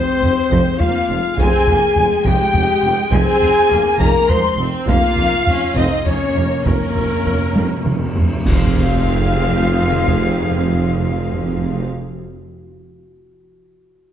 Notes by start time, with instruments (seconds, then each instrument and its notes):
Already playing: viola section G#3, french horn section C4, violin section C5, trumpet section C5, flute C5
0.21 double bass section F1, tuba F1, cello section F2, taiko low
0.51 double bass section F1, tuba F1, cello section F2, taiko
0.79 double bass section F1, tuba F1, cello section F2, viola section A#3, french horn section F4, flute F5, violin section F5, trumpet section F5, taiko low
1.10 tuba F1, double bass section F1, cello section F2, viola section G#3
1.38 double bass section F1, tuba F1, cello section F2, timpani F2, viola section C4, french horn section G#4, violin section G#5, trumpet section G#5, flute G#5, taiko
1.67 double bass section F1, tuba F1, cello section F2, viola section A#3, taiko low
1.96 double bass section F1, tuba F1, cello section F2, viola section G#3, taiko low
2.25 double bass section F1, tuba F1, cello section F2, french horn section G4, flute G5, trumpet section G5, violin section G5, taiko
2.54 double bass section F1, tuba F1, cello section F2, taiko low
2.83 double bass section F1, tuba F1, cello section F2
3.12 double bass section F1, tuba F1, cello section F2, viola section C4, french horn section G#4, flute G#5, violin section G#5, trumpet section G#5, taiko
3.41 double bass section F1, tuba F1, cello section F2, taiko low
3.71 double bass section F1, tuba F1, cello section F2, viola section A#3, taiko low
4.00 double bass section F1, tuba F1, cello section F2, french horn section A#4, trumpet section A#5, violin section A#5, flute A#5, taiko
4.29 double bass section F1, tuba F1, cello section F2, viola section G#3, french horn section C5, flute C6, violin section C6, trumpet section C6, taiko low
4.58 double bass section F1, tuba F1, cello section F2, viola section C4
4.87 double bass section F1, tuba F1, cello section F2, viola section A#3, french horn section F4, violin section F5, flute F5, trumpet section F5, taiko
5.03 timpani F2
5.10 timpani F2
5.17 double bass section F1, tuba F1, timpani F2, cello section F2, taiko low
5.25 timpani F2
5.33 timpani F2
5.41 timpani F2
5.46 double bass section F1, tuba F1, timpani F2, cello section F2, viola section C#4, taiko low
5.55 timpani F2
5.62 timpani F2
5.70 timpani F2
5.75 double bass section F1, tuba F1, cello section F2, timpani F2, viola section C4, french horn section D#4, flute D#5, trumpet section D#5, violin section D#5, taiko
5.85 timpani F2
5.93 timpani F2
6.01 timpani F2
6.05 double bass section F1, tuba F1, cello section F2, timpani F2, viola section A#3, french horn section C#4, violin section C#5, flute C#5, trumpet section C#5, taiko low
6.16 timpani F2
6.24 timpani F2
6.31 timpani F2
6.36 double bass section F1, tuba F1, cello section F2, timpani F2
6.47 timpani F2
6.54 timpani F2
6.62 double bass section F1, timpani F2, cello section F2, viola section C#4, flute A#4, trumpet section A#4, taiko
6.66 tuba F1, timpani F2, french horn section A#3, violin section A#4
6.77 timpani F2
6.84 timpani F2
6.92 double bass section F1, timpani F2, cello section F2, taiko low
6.96 tuba F1, timpani F2
7.07 timpani F2
7.15 timpani F2
7.23 tuba F1, double bass section F1, timpani F2, cello section F2, taiko low
7.30 timpani F2
7.38 timpani F2
7.45 timpani F2
7.53 double bass section F1, tuba F1, timpani F2, cello section F2, taiko high
7.60 timpani F2
7.68 timpani F2
7.76 timpani F2
7.84 double bass section F1, tuba F1, timpani F2, cello section F2, taiko mid
7.91 timpani F2
7.99 timpani F2
8.06 timpani F2
8.14 tuba F1, double bass section F1, timpani F2, cello section F2, taiko low
8.22 timpani F2
8.29 timpani F2
8.37 timpani F2
8.45 double bass section F1, tuba F1, timpani F2, cello section F2, viola section C4 G#4, french horn section F4, flute F5, trumpet section F5, violin section F5, concert bass drum, taiko, crash, sub drop
8.53 timpani F2
8.60 timpani F2
8.68 timpani F2
8.75 timpani F2
8.83 timpani F2
8.90 timpani F2
8.99 timpani F2
9.06 timpani F2
9.14 timpani F2
9.22 timpani F2
9.30 timpani F2
9.37 timpani F2
9.44 timpani F2
9.52 timpani F2
9.60 timpani F2
9.67 timpani F2
9.75 timpani F2
9.82 timpani F2
9.90 timpani F2, taiko mid
9.97 timpani F2
10.05 timpani F2, taiko low
10.13 timpani F2
10.20 timpani F2
10.27 timpani F2
10.35 timpani F2
10.43 timpani F2
10.51 timpani F2
10.58 timpani F2
10.66 timpani F2
10.74 timpani F2
10.81 timpani F2
10.89 timpani F2
10.96 timpani F2
11.04 timpani F2
11.11 timpani F2
11.19 timpani F2
11.26 timpani F2
11.33 timpani F2
11.41 timpani F2
11.49 timpani F2
11.57 timpani F2
11.64 timpani F2
11.72 timpani F2
11.79 timpani F2